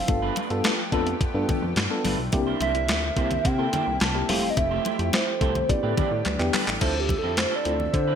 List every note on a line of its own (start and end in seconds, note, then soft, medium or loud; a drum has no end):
0.00 2.29 F3 medium
0.00 0.65 F5 medium
0.08 0.31 G1 loud
0.08 2.31 A3 medium
0.08 0.32 B3 medium
0.08 2.31 B3 medium
0.08 0.32 D4 medium
0.08 0.32 F4 medium
0.08 2.31 G4 medium
0.08 0.32 A4 medium
0.08 muted clean electric guitar stroke soft
0.08 kick loud
0.08 closed hi-hat loud
0.08 muted conga soft
0.22 0.35 A3 medium
0.22 0.36 D4 medium
0.22 0.35 F4 medium
0.22 0.35 B4 loud
0.36 0.47 A3 medium
0.36 0.47 D4 medium
0.36 0.47 F4 medium
0.36 0.47 B4 medium
0.36 closed hi-hat medium
0.36 muted conga medium
0.50 0.62 G2 medium
0.50 0.74 B3 medium
0.50 0.74 D4 medium
0.50 0.74 F4 medium
0.50 0.74 A4 loud
0.50 muted clean electric guitar stroke soft
0.50 closed hi-hat soft
0.64 muted clean electric guitar stroke soft
0.64 snare loud
0.64 clap medium
0.64 closed hi-hat medium
0.64 high conga medium
0.79 muted clean electric guitar stroke soft
0.92 1.15 F2 medium
0.92 1.05 A3 medium
0.92 1.16 B3 medium
0.92 1.16 D4 medium
0.92 1.06 D4 medium
0.92 1.16 F4 medium
0.92 1.06 F4 medium
0.92 1.16 A4 loud
0.92 1.06 B4 loud
0.92 kick medium
0.92 closed hi-hat medium
1.07 muted clean electric guitar stroke medium
1.07 closed hi-hat soft
1.21 1.26 G2 medium
1.21 muted clean electric guitar stroke soft
1.21 kick loud
1.21 closed hi-hat medium
1.34 1.46 G2 loud
1.34 1.66 B3 medium
1.34 1.66 D4 medium
1.34 1.66 F4 medium
1.34 1.66 A4 medium
1.34 muted clean electric guitar stroke soft
1.49 kick loud
1.49 closed hi-hat medium
1.49 muted conga soft
1.49 low conga medium
1.62 1.74 F2 medium
1.62 muted clean electric guitar stroke soft
1.76 1.88 G2 medium
1.76 snare loud
1.76 clap medium
1.76 closed hi-hat medium
1.76 high conga medium
1.90 2.14 B3 medium
1.90 2.14 D4 medium
1.90 2.14 F4 medium
1.90 2.15 A4 loud
1.90 muted clean electric guitar stroke soft
2.04 2.16 G1 medium
2.04 2.18 A3 medium
2.04 2.18 D4 medium
2.04 2.18 F4 medium
2.04 2.17 B4 medium
2.04 open hi-hat medium
2.04 high conga medium
2.18 2.30 B1 medium
2.18 muted clean electric guitar stroke soft
2.32 2.55 C2 loud
2.32 4.27 D3 medium
2.32 2.56 A#3 medium
2.32 4.27 A#3 medium
2.32 4.27 C4 medium
2.32 2.56 D4 medium
2.32 5.66 E4 medium
2.32 2.56 E4 medium
2.32 2.57 G4 loud
2.32 muted clean electric guitar stroke soft
2.32 kick loud
2.32 closed hi-hat loud
2.32 muted conga medium
2.47 2.59 A#3 medium
2.47 2.60 D4 medium
2.47 2.60 E4 medium
2.47 2.60 C5 medium
2.60 2.90 C2 loud
2.60 2.71 A#3 medium
2.60 2.71 D4 medium
2.60 2.71 E4 medium
2.60 2.71 C5 medium
2.60 3.47 E5 loud
2.60 closed hi-hat medium
2.60 muted conga medium
2.75 2.98 A#3 medium
2.75 2.98 D4 medium
2.75 2.99 E4 medium
2.75 2.99 G4 medium
2.75 muted clean electric guitar stroke soft
2.75 closed hi-hat soft
2.88 3.11 D2 medium
2.88 muted clean electric guitar stroke soft
2.88 snare loud
2.88 clap loud
2.88 closed hi-hat medium
2.88 high conga medium
3.03 muted clean electric guitar stroke medium
3.16 3.39 C2 medium
3.16 3.40 A#3 medium
3.16 3.30 A#3 medium
3.16 3.40 D4 medium
3.16 3.30 D4 loud
3.16 3.40 E4 medium
3.16 3.30 E4 medium
3.16 3.41 G4 medium
3.16 3.30 C5 medium
3.16 kick medium
3.16 closed hi-hat medium
3.31 muted clean electric guitar stroke soft
3.31 closed hi-hat medium
3.31 low conga medium
3.45 3.67 C3 loud
3.45 4.03 G5 loud
3.45 muted clean electric guitar stroke soft
3.45 kick loud
3.45 closed hi-hat loud
3.58 3.90 A#3 medium
3.58 3.69 A#3 medium
3.58 3.90 D4 medium
3.58 3.69 D4 medium
3.58 3.69 E4 medium
3.58 3.90 E4 medium
3.58 3.91 A4 medium
3.58 3.69 C5 medium
3.73 3.86 A#3 medium
3.73 3.86 D4 loud
3.73 3.86 E4 medium
3.73 3.85 C5 loud
3.73 closed hi-hat medium
3.73 muted conga soft
3.73 low conga medium
3.87 3.98 C2 loud
3.87 muted clean electric guitar stroke soft
4.00 4.23 C2 medium
4.00 4.31 A5 loud
4.00 snare loud
4.00 clap medium
4.00 closed hi-hat medium
4.00 high conga medium
4.15 4.29 A#3 medium
4.15 4.29 D4 medium
4.15 4.28 E4 medium
4.15 4.28 G4 medium
4.15 muted clean electric guitar stroke medium
4.29 4.51 F1 medium
4.29 5.68 F3 medium
4.29 4.85 A3 medium
4.29 4.42 A3 medium
4.29 6.79 A3 medium
4.29 4.85 C4 medium
4.29 4.85 E4 medium
4.29 4.42 E4 medium
4.29 5.68 G4 medium
4.29 4.85 G4 loud
4.29 4.42 G4 medium
4.29 4.42 C5 loud
4.29 4.50 F5 loud
4.29 open hi-hat medium
4.29 high conga medium
4.43 muted clean electric guitar stroke soft
4.50 4.59 D#5 medium
4.57 4.79 F1 loud
4.57 5.15 E5 loud
4.57 muted clean electric guitar stroke soft
4.57 kick loud
4.57 closed hi-hat loud
4.57 muted conga soft
4.71 4.84 A3 medium
4.71 4.84 E4 medium
4.71 4.84 G4 medium
4.71 4.84 C5 medium
4.85 4.95 A3 medium
4.85 4.95 E4 medium
4.85 4.95 G4 medium
4.85 4.96 C5 medium
4.85 closed hi-hat medium
4.85 muted conga medium
4.99 5.10 F2 loud
4.99 5.23 A3 medium
4.99 5.23 C4 medium
4.99 5.23 E4 medium
4.99 5.23 G4 medium
4.99 muted clean electric guitar stroke medium
4.99 closed hi-hat medium
5.13 5.71 C5 medium
5.13 muted clean electric guitar stroke soft
5.13 snare loud
5.13 clap medium
5.13 closed hi-hat loud
5.13 high conga medium
5.27 muted clean electric guitar stroke soft
5.41 5.63 C2 medium
5.41 5.65 A3 medium
5.41 5.54 A3 medium
5.41 5.65 C4 medium
5.41 5.54 E4 loud
5.41 5.65 E4 medium
5.41 5.54 G4 medium
5.41 5.65 A4 medium
5.41 5.54 C5 loud
5.41 kick loud
5.41 closed hi-hat medium
5.55 muted clean electric guitar stroke soft
5.55 closed hi-hat medium
5.55 low conga medium
5.69 5.81 A1 loud
5.69 6.80 D3 medium
5.69 5.80 B3 medium
5.69 6.80 B3 medium
5.69 5.80 D4 medium
5.69 5.80 E4 medium
5.69 6.80 G4 medium
5.69 5.81 G4 medium
5.69 6.53 D5 loud
5.69 muted clean electric guitar stroke soft
5.69 kick loud
5.69 closed hi-hat medium
5.83 5.94 A2 loud
5.83 5.94 A3 medium
5.83 6.15 B3 medium
5.83 6.15 D4 medium
5.83 5.94 D4 medium
5.83 6.15 E4 medium
5.83 5.93 G4 medium
5.83 6.15 G4 medium
5.83 5.93 B4 medium
5.97 6.10 A3 medium
5.97 6.10 D4 loud
5.97 6.10 G4 loud
5.97 6.10 B4 loud
5.97 kick loud
5.97 closed hi-hat medium
5.97 muted conga soft
5.97 low conga medium
6.11 6.23 A2 loud
6.11 muted clean electric guitar stroke soft
6.25 6.37 D2 medium
6.25 clap medium
6.25 closed hi-hat medium
6.25 high conga medium
6.39 6.51 E2 medium
6.39 6.63 B3 medium
6.39 6.63 D4 medium
6.39 6.63 E4 medium
6.39 6.63 G4 loud
6.39 muted clean electric guitar stroke soft
6.39 clap medium
6.53 6.66 A3 medium
6.53 6.66 D4 medium
6.53 6.66 G4 medium
6.53 6.66 B4 loud
6.53 clap loud
6.53 open hi-hat medium
6.53 high conga medium
6.67 6.79 A1 medium
6.67 muted clean electric guitar stroke soft
6.67 clap loud
6.81 7.15 D2 loud
6.81 8.15 D3 medium
6.81 6.94 F3 medium
6.81 8.15 F3 medium
6.81 7.29 C4 medium
6.81 6.94 C4 medium
6.81 8.15 C4 medium
6.81 7.29 E4 medium
6.81 6.94 E4 medium
6.81 7.29 F4 medium
6.81 7.29 A4 medium
6.81 6.94 A4 medium
6.81 7.01 C5 loud
6.81 8.15 E5 medium
6.81 kick loud
6.81 closed hi-hat medium
6.81 crash medium
6.81 muted conga soft
6.95 muted clean electric guitar stroke soft
7.00 7.20 G4 medium
7.09 muted clean electric guitar stroke soft
7.09 kick medium
7.09 closed hi-hat medium
7.09 muted conga medium
7.19 7.39 A4 loud
7.23 7.46 F2 medium
7.23 7.34 F3 medium
7.23 7.34 C4 medium
7.23 7.34 E4 medium
7.23 7.33 A4 medium
7.37 7.55 C5 medium
7.37 muted clean electric guitar stroke soft
7.37 snare loud
7.37 clap loud
7.37 closed hi-hat medium
7.37 high conga medium
7.51 7.64 F3 medium
7.51 7.65 C4 medium
7.51 7.64 E4 medium
7.51 7.64 A4 medium
7.56 7.73 D5 loud
7.65 7.88 D2 medium
7.65 7.76 F3 medium
7.65 7.97 C4 medium
7.65 7.76 C4 medium
7.65 7.97 E4 medium
7.65 7.76 E4 medium
7.65 7.97 F4 medium
7.65 7.97 A4 medium
7.65 7.76 A4 medium
7.65 closed hi-hat medium
7.75 7.95 D5 medium
7.79 muted clean electric guitar stroke soft
7.79 low conga medium
7.93 8.15 D3 loud
7.93 8.11 C5 loud
7.93 muted clean electric guitar stroke soft
7.93 kick loud
7.93 closed hi-hat medium
8.07 8.15 F3 medium
8.07 8.15 C4 medium
8.07 8.15 E4 medium
8.07 8.15 B4 medium
8.12 8.15 C5 loud